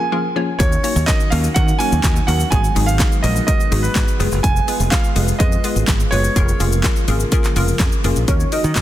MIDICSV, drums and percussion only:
0, 0, Header, 1, 2, 480
1, 0, Start_track
1, 0, Key_signature, -6, "minor"
1, 0, Tempo, 480000
1, 601, Time_signature, 4, 2, 24, 8
1, 8815, End_track
2, 0, Start_track
2, 0, Title_t, "Drums"
2, 599, Note_on_c, 9, 82, 67
2, 600, Note_off_c, 9, 82, 0
2, 600, Note_on_c, 9, 36, 106
2, 600, Note_on_c, 9, 42, 69
2, 600, Note_on_c, 9, 82, 68
2, 700, Note_off_c, 9, 36, 0
2, 700, Note_off_c, 9, 42, 0
2, 700, Note_off_c, 9, 82, 0
2, 721, Note_on_c, 9, 82, 53
2, 722, Note_off_c, 9, 82, 0
2, 722, Note_on_c, 9, 82, 57
2, 822, Note_off_c, 9, 82, 0
2, 839, Note_on_c, 9, 82, 53
2, 840, Note_off_c, 9, 82, 0
2, 840, Note_on_c, 9, 46, 78
2, 840, Note_on_c, 9, 82, 54
2, 940, Note_off_c, 9, 46, 0
2, 940, Note_off_c, 9, 82, 0
2, 963, Note_on_c, 9, 82, 78
2, 1063, Note_off_c, 9, 82, 0
2, 1073, Note_on_c, 9, 38, 94
2, 1080, Note_on_c, 9, 82, 78
2, 1081, Note_on_c, 9, 36, 119
2, 1081, Note_on_c, 9, 39, 127
2, 1083, Note_off_c, 9, 82, 0
2, 1083, Note_on_c, 9, 42, 73
2, 1083, Note_on_c, 9, 82, 77
2, 1173, Note_off_c, 9, 38, 0
2, 1181, Note_off_c, 9, 36, 0
2, 1181, Note_off_c, 9, 39, 0
2, 1183, Note_off_c, 9, 42, 0
2, 1183, Note_off_c, 9, 82, 0
2, 1201, Note_on_c, 9, 82, 53
2, 1202, Note_off_c, 9, 82, 0
2, 1202, Note_on_c, 9, 82, 51
2, 1302, Note_off_c, 9, 82, 0
2, 1318, Note_on_c, 9, 46, 76
2, 1318, Note_on_c, 9, 82, 54
2, 1321, Note_off_c, 9, 82, 0
2, 1321, Note_on_c, 9, 82, 50
2, 1418, Note_off_c, 9, 46, 0
2, 1421, Note_off_c, 9, 82, 0
2, 1438, Note_on_c, 9, 82, 86
2, 1440, Note_off_c, 9, 82, 0
2, 1440, Note_on_c, 9, 82, 52
2, 1540, Note_off_c, 9, 82, 0
2, 1558, Note_on_c, 9, 42, 77
2, 1558, Note_on_c, 9, 82, 80
2, 1560, Note_on_c, 9, 36, 127
2, 1563, Note_off_c, 9, 82, 0
2, 1563, Note_on_c, 9, 82, 69
2, 1658, Note_off_c, 9, 42, 0
2, 1660, Note_off_c, 9, 36, 0
2, 1663, Note_off_c, 9, 82, 0
2, 1681, Note_on_c, 9, 82, 57
2, 1682, Note_off_c, 9, 82, 0
2, 1682, Note_on_c, 9, 82, 59
2, 1782, Note_off_c, 9, 82, 0
2, 1800, Note_on_c, 9, 46, 74
2, 1800, Note_on_c, 9, 82, 54
2, 1900, Note_off_c, 9, 46, 0
2, 1900, Note_off_c, 9, 82, 0
2, 1921, Note_on_c, 9, 82, 66
2, 1922, Note_off_c, 9, 82, 0
2, 1922, Note_on_c, 9, 82, 51
2, 2022, Note_off_c, 9, 82, 0
2, 2034, Note_on_c, 9, 38, 100
2, 2038, Note_on_c, 9, 36, 126
2, 2042, Note_on_c, 9, 39, 125
2, 2043, Note_on_c, 9, 42, 90
2, 2043, Note_on_c, 9, 82, 90
2, 2044, Note_off_c, 9, 82, 0
2, 2044, Note_on_c, 9, 82, 66
2, 2134, Note_off_c, 9, 38, 0
2, 2138, Note_off_c, 9, 36, 0
2, 2142, Note_off_c, 9, 39, 0
2, 2143, Note_off_c, 9, 42, 0
2, 2144, Note_off_c, 9, 82, 0
2, 2160, Note_on_c, 9, 82, 56
2, 2161, Note_off_c, 9, 82, 0
2, 2161, Note_on_c, 9, 82, 52
2, 2261, Note_off_c, 9, 82, 0
2, 2279, Note_on_c, 9, 82, 42
2, 2284, Note_off_c, 9, 82, 0
2, 2284, Note_on_c, 9, 46, 73
2, 2284, Note_on_c, 9, 82, 53
2, 2384, Note_off_c, 9, 46, 0
2, 2384, Note_off_c, 9, 82, 0
2, 2399, Note_on_c, 9, 82, 77
2, 2402, Note_off_c, 9, 82, 0
2, 2402, Note_on_c, 9, 82, 55
2, 2502, Note_off_c, 9, 82, 0
2, 2519, Note_on_c, 9, 42, 67
2, 2519, Note_on_c, 9, 82, 71
2, 2520, Note_on_c, 9, 36, 110
2, 2619, Note_off_c, 9, 42, 0
2, 2619, Note_off_c, 9, 82, 0
2, 2620, Note_off_c, 9, 36, 0
2, 2640, Note_on_c, 9, 82, 54
2, 2642, Note_off_c, 9, 82, 0
2, 2642, Note_on_c, 9, 82, 62
2, 2742, Note_off_c, 9, 82, 0
2, 2758, Note_on_c, 9, 82, 54
2, 2762, Note_off_c, 9, 82, 0
2, 2762, Note_on_c, 9, 46, 76
2, 2762, Note_on_c, 9, 82, 52
2, 2862, Note_off_c, 9, 46, 0
2, 2862, Note_off_c, 9, 82, 0
2, 2881, Note_on_c, 9, 82, 61
2, 2883, Note_off_c, 9, 82, 0
2, 2883, Note_on_c, 9, 82, 77
2, 2983, Note_off_c, 9, 82, 0
2, 2992, Note_on_c, 9, 38, 99
2, 2998, Note_on_c, 9, 82, 82
2, 3000, Note_on_c, 9, 36, 120
2, 3000, Note_on_c, 9, 39, 115
2, 3003, Note_off_c, 9, 82, 0
2, 3003, Note_on_c, 9, 42, 76
2, 3003, Note_on_c, 9, 82, 78
2, 3093, Note_off_c, 9, 38, 0
2, 3100, Note_off_c, 9, 39, 0
2, 3101, Note_off_c, 9, 36, 0
2, 3103, Note_off_c, 9, 42, 0
2, 3103, Note_off_c, 9, 82, 0
2, 3119, Note_on_c, 9, 82, 52
2, 3122, Note_off_c, 9, 82, 0
2, 3122, Note_on_c, 9, 82, 53
2, 3222, Note_off_c, 9, 82, 0
2, 3237, Note_on_c, 9, 46, 75
2, 3237, Note_on_c, 9, 82, 53
2, 3240, Note_off_c, 9, 82, 0
2, 3240, Note_on_c, 9, 82, 48
2, 3337, Note_off_c, 9, 46, 0
2, 3340, Note_off_c, 9, 82, 0
2, 3359, Note_on_c, 9, 82, 84
2, 3362, Note_off_c, 9, 82, 0
2, 3362, Note_on_c, 9, 82, 53
2, 3462, Note_off_c, 9, 82, 0
2, 3479, Note_on_c, 9, 42, 80
2, 3479, Note_on_c, 9, 82, 81
2, 3480, Note_on_c, 9, 36, 127
2, 3482, Note_off_c, 9, 82, 0
2, 3482, Note_on_c, 9, 82, 66
2, 3579, Note_off_c, 9, 42, 0
2, 3580, Note_off_c, 9, 36, 0
2, 3582, Note_off_c, 9, 82, 0
2, 3602, Note_on_c, 9, 82, 54
2, 3603, Note_off_c, 9, 82, 0
2, 3603, Note_on_c, 9, 82, 61
2, 3703, Note_off_c, 9, 82, 0
2, 3719, Note_on_c, 9, 46, 75
2, 3719, Note_on_c, 9, 82, 53
2, 3819, Note_off_c, 9, 46, 0
2, 3819, Note_off_c, 9, 82, 0
2, 3840, Note_on_c, 9, 82, 66
2, 3842, Note_off_c, 9, 82, 0
2, 3842, Note_on_c, 9, 82, 53
2, 3942, Note_off_c, 9, 82, 0
2, 3953, Note_on_c, 9, 38, 102
2, 3957, Note_on_c, 9, 36, 127
2, 3960, Note_on_c, 9, 39, 125
2, 3961, Note_on_c, 9, 42, 84
2, 3961, Note_on_c, 9, 82, 85
2, 4053, Note_off_c, 9, 38, 0
2, 4058, Note_off_c, 9, 36, 0
2, 4060, Note_off_c, 9, 39, 0
2, 4061, Note_off_c, 9, 42, 0
2, 4061, Note_off_c, 9, 82, 0
2, 4078, Note_on_c, 9, 82, 58
2, 4081, Note_off_c, 9, 82, 0
2, 4081, Note_on_c, 9, 82, 56
2, 4181, Note_off_c, 9, 82, 0
2, 4198, Note_on_c, 9, 82, 43
2, 4203, Note_off_c, 9, 82, 0
2, 4203, Note_on_c, 9, 46, 73
2, 4203, Note_on_c, 9, 82, 54
2, 4303, Note_off_c, 9, 46, 0
2, 4303, Note_off_c, 9, 82, 0
2, 4318, Note_on_c, 9, 82, 78
2, 4322, Note_off_c, 9, 82, 0
2, 4322, Note_on_c, 9, 82, 51
2, 4422, Note_off_c, 9, 82, 0
2, 4440, Note_on_c, 9, 36, 106
2, 4440, Note_on_c, 9, 42, 73
2, 4440, Note_on_c, 9, 82, 67
2, 4540, Note_off_c, 9, 36, 0
2, 4540, Note_off_c, 9, 42, 0
2, 4540, Note_off_c, 9, 82, 0
2, 4562, Note_on_c, 9, 82, 59
2, 4563, Note_off_c, 9, 82, 0
2, 4563, Note_on_c, 9, 82, 51
2, 4663, Note_off_c, 9, 82, 0
2, 4681, Note_on_c, 9, 46, 74
2, 4681, Note_on_c, 9, 82, 55
2, 4781, Note_off_c, 9, 46, 0
2, 4781, Note_off_c, 9, 82, 0
2, 4802, Note_on_c, 9, 82, 75
2, 4804, Note_off_c, 9, 82, 0
2, 4804, Note_on_c, 9, 82, 59
2, 4904, Note_off_c, 9, 82, 0
2, 4914, Note_on_c, 9, 38, 94
2, 4920, Note_on_c, 9, 82, 78
2, 4921, Note_on_c, 9, 36, 122
2, 4921, Note_on_c, 9, 39, 122
2, 4924, Note_off_c, 9, 82, 0
2, 4924, Note_on_c, 9, 42, 79
2, 4924, Note_on_c, 9, 82, 78
2, 5014, Note_off_c, 9, 38, 0
2, 5021, Note_off_c, 9, 36, 0
2, 5021, Note_off_c, 9, 39, 0
2, 5024, Note_off_c, 9, 42, 0
2, 5024, Note_off_c, 9, 82, 0
2, 5040, Note_on_c, 9, 82, 54
2, 5044, Note_off_c, 9, 82, 0
2, 5044, Note_on_c, 9, 82, 52
2, 5144, Note_off_c, 9, 82, 0
2, 5159, Note_on_c, 9, 46, 76
2, 5159, Note_on_c, 9, 82, 54
2, 5160, Note_off_c, 9, 82, 0
2, 5160, Note_on_c, 9, 82, 50
2, 5259, Note_off_c, 9, 46, 0
2, 5260, Note_off_c, 9, 82, 0
2, 5279, Note_on_c, 9, 82, 55
2, 5280, Note_off_c, 9, 82, 0
2, 5280, Note_on_c, 9, 82, 83
2, 5380, Note_off_c, 9, 82, 0
2, 5400, Note_on_c, 9, 42, 77
2, 5400, Note_on_c, 9, 82, 80
2, 5401, Note_off_c, 9, 82, 0
2, 5401, Note_on_c, 9, 36, 127
2, 5401, Note_on_c, 9, 82, 66
2, 5500, Note_off_c, 9, 42, 0
2, 5501, Note_off_c, 9, 36, 0
2, 5501, Note_off_c, 9, 82, 0
2, 5521, Note_on_c, 9, 82, 61
2, 5522, Note_off_c, 9, 82, 0
2, 5522, Note_on_c, 9, 82, 54
2, 5622, Note_off_c, 9, 82, 0
2, 5639, Note_on_c, 9, 82, 49
2, 5641, Note_off_c, 9, 82, 0
2, 5641, Note_on_c, 9, 46, 73
2, 5641, Note_on_c, 9, 82, 55
2, 5741, Note_off_c, 9, 46, 0
2, 5741, Note_off_c, 9, 82, 0
2, 5762, Note_on_c, 9, 82, 50
2, 5862, Note_off_c, 9, 82, 0
2, 5875, Note_on_c, 9, 38, 104
2, 5879, Note_on_c, 9, 36, 125
2, 5881, Note_on_c, 9, 82, 64
2, 5882, Note_on_c, 9, 39, 124
2, 5883, Note_off_c, 9, 82, 0
2, 5883, Note_on_c, 9, 42, 86
2, 5883, Note_on_c, 9, 82, 90
2, 5975, Note_off_c, 9, 38, 0
2, 5979, Note_off_c, 9, 36, 0
2, 5982, Note_off_c, 9, 39, 0
2, 5983, Note_off_c, 9, 42, 0
2, 5983, Note_off_c, 9, 82, 0
2, 5998, Note_on_c, 9, 82, 59
2, 6002, Note_off_c, 9, 82, 0
2, 6002, Note_on_c, 9, 82, 53
2, 6102, Note_off_c, 9, 82, 0
2, 6120, Note_on_c, 9, 82, 44
2, 6124, Note_off_c, 9, 82, 0
2, 6124, Note_on_c, 9, 46, 72
2, 6124, Note_on_c, 9, 82, 52
2, 6224, Note_off_c, 9, 46, 0
2, 6224, Note_off_c, 9, 82, 0
2, 6240, Note_on_c, 9, 82, 76
2, 6243, Note_off_c, 9, 82, 0
2, 6243, Note_on_c, 9, 82, 54
2, 6343, Note_off_c, 9, 82, 0
2, 6361, Note_on_c, 9, 36, 109
2, 6361, Note_on_c, 9, 42, 70
2, 6361, Note_on_c, 9, 82, 67
2, 6363, Note_off_c, 9, 82, 0
2, 6363, Note_on_c, 9, 82, 70
2, 6461, Note_off_c, 9, 36, 0
2, 6461, Note_off_c, 9, 42, 0
2, 6463, Note_off_c, 9, 82, 0
2, 6483, Note_on_c, 9, 82, 53
2, 6484, Note_off_c, 9, 82, 0
2, 6484, Note_on_c, 9, 82, 60
2, 6584, Note_off_c, 9, 82, 0
2, 6600, Note_on_c, 9, 82, 51
2, 6602, Note_off_c, 9, 82, 0
2, 6602, Note_on_c, 9, 46, 75
2, 6602, Note_on_c, 9, 82, 56
2, 6702, Note_off_c, 9, 46, 0
2, 6702, Note_off_c, 9, 82, 0
2, 6722, Note_on_c, 9, 82, 59
2, 6723, Note_off_c, 9, 82, 0
2, 6723, Note_on_c, 9, 82, 75
2, 6823, Note_off_c, 9, 82, 0
2, 6833, Note_on_c, 9, 38, 96
2, 6839, Note_on_c, 9, 82, 80
2, 6840, Note_on_c, 9, 39, 123
2, 6842, Note_on_c, 9, 36, 112
2, 6843, Note_off_c, 9, 82, 0
2, 6843, Note_on_c, 9, 42, 80
2, 6843, Note_on_c, 9, 82, 76
2, 6933, Note_off_c, 9, 38, 0
2, 6940, Note_off_c, 9, 39, 0
2, 6942, Note_off_c, 9, 36, 0
2, 6943, Note_off_c, 9, 42, 0
2, 6943, Note_off_c, 9, 82, 0
2, 6960, Note_on_c, 9, 82, 54
2, 6963, Note_off_c, 9, 82, 0
2, 6963, Note_on_c, 9, 82, 52
2, 7063, Note_off_c, 9, 82, 0
2, 7078, Note_on_c, 9, 46, 74
2, 7078, Note_on_c, 9, 82, 54
2, 7083, Note_off_c, 9, 82, 0
2, 7083, Note_on_c, 9, 82, 50
2, 7178, Note_off_c, 9, 46, 0
2, 7183, Note_off_c, 9, 82, 0
2, 7200, Note_on_c, 9, 82, 80
2, 7201, Note_off_c, 9, 82, 0
2, 7201, Note_on_c, 9, 82, 53
2, 7301, Note_off_c, 9, 82, 0
2, 7319, Note_on_c, 9, 42, 78
2, 7319, Note_on_c, 9, 82, 77
2, 7321, Note_on_c, 9, 36, 122
2, 7322, Note_off_c, 9, 82, 0
2, 7322, Note_on_c, 9, 82, 67
2, 7419, Note_off_c, 9, 42, 0
2, 7421, Note_off_c, 9, 36, 0
2, 7422, Note_off_c, 9, 82, 0
2, 7442, Note_on_c, 9, 82, 60
2, 7444, Note_on_c, 9, 39, 68
2, 7542, Note_off_c, 9, 82, 0
2, 7544, Note_off_c, 9, 39, 0
2, 7559, Note_on_c, 9, 82, 49
2, 7561, Note_off_c, 9, 82, 0
2, 7561, Note_on_c, 9, 46, 73
2, 7561, Note_on_c, 9, 82, 51
2, 7661, Note_off_c, 9, 46, 0
2, 7661, Note_off_c, 9, 82, 0
2, 7681, Note_on_c, 9, 82, 65
2, 7682, Note_off_c, 9, 82, 0
2, 7682, Note_on_c, 9, 82, 54
2, 7782, Note_off_c, 9, 82, 0
2, 7794, Note_on_c, 9, 38, 101
2, 7799, Note_on_c, 9, 36, 124
2, 7801, Note_on_c, 9, 39, 122
2, 7802, Note_on_c, 9, 42, 86
2, 7802, Note_on_c, 9, 82, 89
2, 7893, Note_off_c, 9, 38, 0
2, 7899, Note_off_c, 9, 36, 0
2, 7901, Note_off_c, 9, 39, 0
2, 7902, Note_off_c, 9, 42, 0
2, 7902, Note_off_c, 9, 82, 0
2, 7920, Note_on_c, 9, 82, 54
2, 8020, Note_off_c, 9, 82, 0
2, 8038, Note_on_c, 9, 82, 43
2, 8043, Note_off_c, 9, 82, 0
2, 8043, Note_on_c, 9, 46, 71
2, 8043, Note_on_c, 9, 82, 53
2, 8143, Note_off_c, 9, 46, 0
2, 8143, Note_off_c, 9, 82, 0
2, 8159, Note_on_c, 9, 82, 75
2, 8162, Note_off_c, 9, 82, 0
2, 8162, Note_on_c, 9, 82, 50
2, 8262, Note_off_c, 9, 82, 0
2, 8280, Note_on_c, 9, 42, 68
2, 8280, Note_on_c, 9, 82, 63
2, 8281, Note_off_c, 9, 82, 0
2, 8281, Note_on_c, 9, 36, 103
2, 8281, Note_on_c, 9, 82, 68
2, 8380, Note_off_c, 9, 42, 0
2, 8381, Note_off_c, 9, 36, 0
2, 8381, Note_off_c, 9, 82, 0
2, 8400, Note_on_c, 9, 82, 50
2, 8402, Note_off_c, 9, 82, 0
2, 8402, Note_on_c, 9, 82, 57
2, 8502, Note_off_c, 9, 82, 0
2, 8520, Note_on_c, 9, 46, 74
2, 8520, Note_on_c, 9, 82, 51
2, 8620, Note_off_c, 9, 46, 0
2, 8620, Note_off_c, 9, 82, 0
2, 8640, Note_on_c, 9, 82, 57
2, 8641, Note_off_c, 9, 82, 0
2, 8641, Note_on_c, 9, 82, 74
2, 8741, Note_off_c, 9, 82, 0
2, 8752, Note_on_c, 9, 38, 93
2, 8758, Note_on_c, 9, 82, 72
2, 8760, Note_on_c, 9, 39, 113
2, 8761, Note_on_c, 9, 36, 113
2, 8762, Note_off_c, 9, 82, 0
2, 8762, Note_on_c, 9, 42, 74
2, 8762, Note_on_c, 9, 82, 74
2, 8815, Note_off_c, 9, 36, 0
2, 8815, Note_off_c, 9, 38, 0
2, 8815, Note_off_c, 9, 39, 0
2, 8815, Note_off_c, 9, 42, 0
2, 8815, Note_off_c, 9, 82, 0
2, 8815, End_track
0, 0, End_of_file